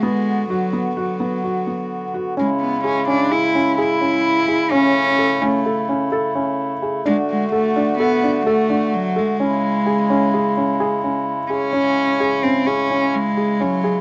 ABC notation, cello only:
X:1
M:5/4
L:1/8
Q:1/4=128
K:C#phr
V:1 name="Cello"
G,2 F,2 F,4- F, z | G, B, C D E2 E4 | C3 A,2 z4 z | G, G, A,2 B,2 A,2 F, G,- |
G,8 z C- | [K:C#m] C3 ^B, C2 G,2 F,2 |]